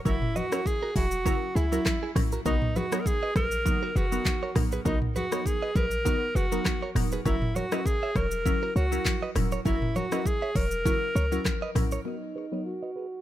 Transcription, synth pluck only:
0.05 0.29 F#3 medium
0.05 0.29 C#4 medium
0.05 0.29 E4 medium
0.05 0.29 A#4 loud
0.52 0.74 F#3 medium
0.52 0.74 C#4 medium
0.52 0.74 E4 medium
0.52 0.74 A#4 medium
1.25 1.49 F#3 medium
1.25 1.49 C#4 medium
1.25 1.49 E4 medium
1.25 1.49 A#4 loud
1.72 1.94 F#3 medium
1.72 1.94 C#4 medium
1.72 1.94 E4 medium
1.72 1.94 A#4 medium
2.15 2.39 F#3 medium
2.15 2.39 C#4 medium
2.15 2.39 E4 medium
2.15 2.39 A#4 medium
2.46 2.69 F#3 loud
2.46 2.69 B3 medium
2.46 2.69 D#4 medium
2.46 2.69 A#4 loud
2.92 3.14 F#3 medium
2.92 3.14 B3 medium
2.92 3.14 D#4 medium
2.92 3.14 A#4 medium
3.65 3.89 F#3 medium
3.65 3.89 B3 medium
3.65 3.89 D#4 medium
3.65 3.89 A#4 loud
4.12 4.34 F#3 medium
4.12 4.34 B3 medium
4.12 4.34 D#4 medium
4.12 4.34 A#4 medium
4.55 4.79 F#3 medium
4.55 4.79 B3 medium
4.55 4.79 D#4 medium
4.55 4.79 A#4 medium
4.85 5.09 F#3 medium
4.85 5.09 B3 medium
4.85 5.09 D#4 medium
4.85 5.09 A#4 loud
5.32 5.54 F#3 medium
5.32 5.54 B3 medium
5.32 5.54 D#4 medium
5.32 5.54 A#4 medium
6.05 6.29 F#3 medium
6.05 6.29 B3 medium
6.05 6.29 D#4 medium
6.05 6.29 A#4 loud
6.52 6.74 F#3 medium
6.52 6.74 B3 medium
6.52 6.74 D#4 medium
6.52 6.74 A#4 medium
6.95 7.19 F#3 medium
6.95 7.19 B3 medium
6.95 7.19 D#4 medium
6.95 7.19 A#4 medium
7.25 7.49 F#3 medium
7.25 7.49 C#4 medium
7.25 7.49 E4 medium
7.25 7.49 A#4 loud
7.72 7.94 F#3 medium
7.72 7.94 C#4 medium
7.72 7.94 E4 medium
7.72 7.94 A#4 medium
8.45 8.69 F#3 medium
8.45 8.69 C#4 medium
8.45 8.69 E4 medium
8.45 8.69 A#4 loud
8.92 9.14 F#3 medium
8.92 9.14 C#4 medium
8.92 9.14 E4 medium
8.92 9.14 A#4 medium
9.36 9.59 F#3 medium
9.36 9.59 C#4 medium
9.36 9.59 E4 medium
9.36 9.59 A#4 medium
9.65 9.89 F#3 medium
9.65 9.89 C#4 medium
9.65 9.89 E4 medium
9.65 9.89 A#4 loud
10.12 10.34 F#3 medium
10.12 10.34 C#4 medium
10.12 10.34 E4 medium
10.12 10.34 A#4 medium
10.85 11.09 F#3 loud
10.85 11.09 C#4 medium
10.85 11.09 E4 medium
10.85 11.09 A#4 loud
11.32 11.54 F#3 medium
11.32 11.54 C#4 medium
11.32 11.54 E4 medium
11.32 11.54 A#4 medium
11.75 11.99 F#3 medium
11.75 11.99 C#4 medium
11.75 11.99 E4 medium
11.75 11.99 A#4 medium
12.05 12.29 F#3 medium
12.05 12.29 B3 medium
12.05 12.29 D#4 medium
12.05 12.29 A#4 loud
12.52 12.74 F#3 medium
12.52 12.74 B3 medium
12.52 12.74 D#4 medium
12.52 12.74 A#4 medium

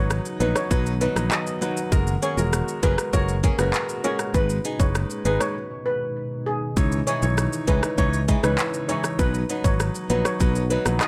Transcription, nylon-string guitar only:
0.40 0.57 F#3 medium
0.40 0.58 B3 medium
0.40 0.58 D#4 medium
1.01 1.18 F#3 medium
1.01 1.18 B3 medium
1.01 1.18 D#4 loud
1.46 muted nylon-string guitar stroke medium
1.61 1.78 F#3 medium
1.61 1.79 B3 medium
1.61 1.79 D#4 medium
2.22 2.39 A#3 medium
2.22 2.39 C#4 medium
2.22 2.40 G#4 medium
2.82 3.00 A#3 medium
2.82 2.97 C#4 medium
2.82 2.97 G#4 medium
2.98 muted nylon-string guitar stroke soft
3.43 3.58 A#3 medium
3.43 3.58 C#4 medium
3.43 3.57 G#4 loud
3.58 3.72 A#3 medium
3.58 3.72 C#4 medium
3.58 3.72 G#4 medium
4.04 4.21 A#3 medium
4.04 4.18 C#4 medium
4.04 4.18 G#4 medium
4.19 muted nylon-string guitar stroke soft
4.64 4.82 B3 medium
4.64 4.82 D#4 medium
4.64 4.82 G#4 medium
5.25 5.42 B3 medium
5.25 5.42 D#4 medium
5.25 5.43 G#4 medium
7.07 7.24 E3 medium
7.07 7.24 G#3 medium
7.07 7.24 D#4 medium
7.67 7.84 E3 medium
7.67 7.82 G#3 medium
7.67 7.81 D#4 medium
7.82 muted nylon-string guitar stroke soft
8.28 8.43 E3 medium
8.28 8.42 G#3 medium
8.28 8.42 D#4 loud
8.43 8.57 E3 medium
8.43 8.57 G#3 medium
8.43 8.57 D#4 medium
8.88 9.06 E3 medium
8.88 9.03 G#3 medium
8.88 9.03 D#4 medium
9.04 muted nylon-string guitar stroke soft
9.49 9.66 F#3 medium
9.49 9.67 B3 medium
9.49 9.67 D#4 medium
10.10 10.27 F#3 medium
10.10 10.27 B3 medium
10.10 10.27 D#4 medium
10.70 10.87 F#3 medium
10.70 10.88 B3 medium
10.70 10.88 D#4 loud

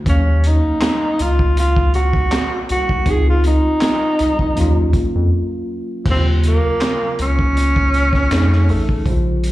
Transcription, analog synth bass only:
0.07 0.60 D#2 loud
0.65 0.72 C#2 soft
1.20 2.28 C#2 medium
2.70 3.04 C2 loud
3.07 3.60 C#2 loud
3.66 3.72 C2 soft
4.20 4.54 C2 medium
4.58 4.75 D#2 loud
4.78 4.93 D#2 medium
5.15 5.31 F2 medium
6.06 6.60 D#2 loud
6.65 6.71 C#2 soft
7.19 8.28 C#2 medium
8.32 8.71 F2 loud
8.69 9.03 A1 medium
9.06 9.52 A#1 loud

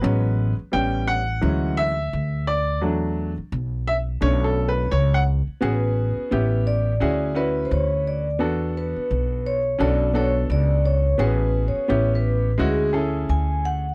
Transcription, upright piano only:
0.00 0.51 F#3 medium
0.00 0.51 G#3 medium
0.00 0.51 B3 medium
0.00 0.52 C#4 medium
0.00 0.54 B4 loud
0.72 1.21 G3 medium
0.72 1.21 B3 medium
0.72 1.21 C#4 medium
0.72 1.09 G5 loud
1.08 1.80 F#5 loud
1.41 1.91 E3 medium
1.41 1.91 F#3 medium
1.41 1.91 G#3 medium
1.41 1.91 C#4 medium
1.77 2.49 E5 loud
2.47 2.80 D5 medium
2.81 3.30 F#3 medium
2.81 3.31 A3 medium
2.81 3.31 D4 medium
3.87 3.95 E5 loud
4.21 5.22 A3 medium
4.21 5.23 C#4 medium
4.21 5.22 D4 medium
4.21 4.46 C#5 medium
4.44 4.69 A4 medium
4.68 4.92 B4 medium
4.91 5.16 C#5 medium
5.14 5.22 F#5 loud
5.61 6.30 B3 medium
5.61 6.30 C#4 medium
5.61 6.31 F#4 medium
5.61 6.32 G#4 medium
6.31 6.91 B3 medium
6.31 6.91 C#4 medium
6.31 6.92 E4 medium
6.31 6.92 G4 medium
7.00 7.31 C#4 medium
7.00 7.31 E4 medium
7.00 7.31 F#4 medium
7.00 7.31 G#4 medium
7.34 8.25 C#4 medium
7.34 8.26 E4 medium
7.34 8.26 F#4 medium
7.34 8.26 B4 medium
8.39 9.58 B3 medium
8.39 9.59 D4 medium
8.39 9.59 F#4 medium
8.39 9.59 A4 medium
9.79 10.09 C#4 medium
9.79 10.10 D4 medium
9.79 10.10 F#4 medium
9.79 10.10 A4 medium
10.13 11.04 B3 medium
10.13 11.05 D4 medium
10.13 11.05 F#4 medium
10.13 11.05 A4 medium
11.18 11.87 B3 medium
11.18 11.88 C#4 medium
11.18 11.89 F#4 medium
11.18 11.89 G#4 medium
11.88 12.49 B3 medium
11.88 12.49 C#4 medium
11.88 12.49 E4 medium
11.88 12.49 G4 medium
12.58 12.88 G#3 medium
12.58 12.89 C#4 medium
12.58 12.89 E4 medium
12.58 12.89 F#4 medium
12.93 13.83 C#4 medium
12.93 13.84 E4 medium
12.93 13.83 G#4 medium
12.93 13.84 A4 medium

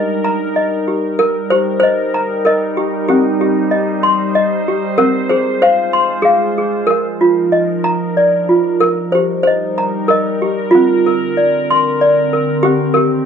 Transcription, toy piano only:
0.00 0.86 G4 medium
0.00 0.56 A#4 medium
0.00 0.55 D#5 medium
0.24 1.20 A#5 medium
0.56 1.20 D#5 medium
0.88 1.20 G4 medium
1.19 2.45 A#4 loud
1.50 2.76 G4 medium
1.50 1.79 C5 loud
1.80 2.47 C5 loud
1.80 2.45 D#5 medium
2.14 3.09 A#5 medium
2.45 3.11 A#4 medium
2.45 3.09 D#5 medium
2.77 3.07 G4 medium
3.08 4.37 C4 medium
3.08 3.40 G4 medium
3.41 4.67 G4 medium
3.71 4.34 D#5 medium
4.03 4.99 C6 medium
4.35 4.99 D#5 medium
4.68 5.00 G4 medium
4.98 6.25 C4 medium
4.98 5.31 A#4 loud
5.29 6.21 G#4 medium
5.29 5.44 C5 medium
5.62 6.28 C5 loud
5.62 6.24 F5 medium
5.93 6.89 C6 medium
6.22 6.57 G#4 medium
6.22 6.89 F5 medium
6.58 6.90 G#4 medium
6.87 6.91 A#4 loud
6.87 8.18 A#4 medium
7.21 8.17 F4 medium
7.52 8.17 D#5 medium
7.84 8.17 A#5 medium
8.17 8.82 D5 medium
8.49 8.82 F4 medium
8.80 8.83 A#4 loud
8.80 10.08 A#4 medium
9.12 10.41 G4 medium
9.12 9.27 C5 medium
9.43 10.10 C5 medium
9.43 10.09 D#5 medium
9.78 10.74 A#5 medium
10.08 10.75 A#4 loud
10.08 10.74 D#5 medium
10.42 10.74 G4 medium
10.71 12.27 F4 medium
10.75 12.01 C4 medium
11.06 12.32 A#4 medium
11.37 12.00 D5 medium
11.71 12.64 C6 medium
12.01 12.64 D5 medium
12.33 12.64 A#4 medium
12.63 13.26 C4 medium
12.63 12.92 G4 loud
12.94 13.26 G4 medium
12.94 13.26 A#4 medium

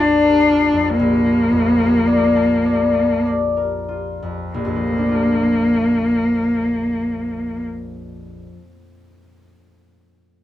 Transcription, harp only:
0.00 0.98 A#1 soft
0.00 0.72 F2 soft
0.00 0.47 F4 soft
0.00 0.23 A#4 soft
0.00 2.06 D5 soft
0.00 2.34 A5 soft
0.24 1.79 A#4 soft
0.49 1.25 F4 soft
0.73 1.51 F2 soft
0.99 4.53 A#1 soft
1.26 3.87 F4 soft
1.52 4.21 F2 soft
1.80 3.56 A#4 soft
2.07 2.64 D5 soft
2.35 2.93 A5 soft
2.66 3.24 D5 soft
2.94 6.84 A5 soft
3.25 7.15 D5 soft
3.57 7.47 A#4 soft
3.89 5.08 F4 soft
4.22 4.59 F2 soft
4.54 8.44 A#1 soft
4.65 8.55 F2 soft
4.76 8.58 F3 soft
4.87 8.20 A3 soft
4.98 8.04 D4 soft
5.09 8.15 F4 soft

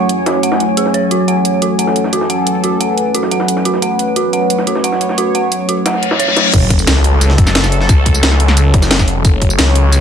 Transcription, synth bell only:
0.26 0.37 F#4 medium
0.43 0.54 F#5 medium
0.77 0.88 G#4 medium
0.94 1.10 C#5 medium
1.11 1.22 F#4 medium
1.28 1.39 F#5 medium
1.62 1.73 F#4 medium
1.79 1.90 F#5 medium
2.13 2.24 F#4 medium
2.30 2.41 F#5 medium
2.64 2.75 F#4 medium
2.81 2.92 F#5 medium
3.15 3.26 F#4 medium
3.31 3.43 F#5 medium
3.65 3.76 F#4 medium
3.82 3.93 F#5 medium
4.16 4.27 F#4 medium
4.33 4.44 F#5 medium
4.67 4.78 F#4 medium
4.84 4.95 F#5 medium
5.18 5.29 F#4 medium
5.35 5.46 F#5 medium
5.69 5.80 F#4 medium
5.86 5.97 F#5 medium
6.20 6.31 C#5 loud
6.36 6.48 C#5 medium

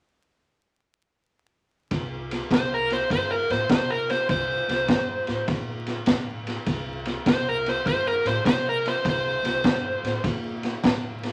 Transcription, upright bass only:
1.91 2.38 C2 medium
2.51 2.98 C2 medium
3.10 3.41 G2 medium
3.50 3.66 A2 medium
3.69 4.17 C3 medium
4.29 4.60 C2 medium
4.69 4.84 C2 medium
4.89 5.20 G2 medium
5.28 5.44 A2 medium
5.48 5.95 A#2 medium
6.07 6.54 A2 medium
6.67 7.14 C2 medium
7.26 7.73 C2 medium
7.86 8.17 G2 medium
8.25 8.41 A2 medium
8.45 8.93 C3 medium
9.05 9.36 C2 medium
9.43 9.60 C2 medium
9.64 9.95 G2 medium
10.03 10.20 A2 medium
10.23 10.71 A#2 medium
10.84 11.31 A2 medium

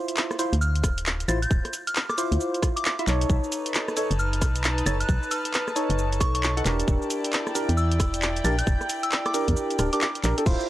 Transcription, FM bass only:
0.53 0.85 D2 loud
0.84 1.25 D1 medium
1.28 1.46 A1 loud
1.51 1.61 D1 medium
2.32 2.38 D2 loud
3.07 3.25 B1 medium
3.30 3.40 B1 medium
4.11 4.43 F#1 loud
4.42 4.83 B1 medium
4.86 5.04 F#1 loud
5.09 5.19 B1 loud
5.90 6.22 F#1 loud
6.21 6.62 B1 medium
6.65 6.83 E1 loud
6.88 6.98 E1 loud
7.69 8.01 E2 loud
8.00 8.41 E1 medium
8.44 8.62 A#1 loud
8.67 8.77 E1 loud
9.48 9.54 E2 loud
9.79 9.89 D1 loud
10.24 10.34 A#1 loud
10.46 10.56 D1 medium

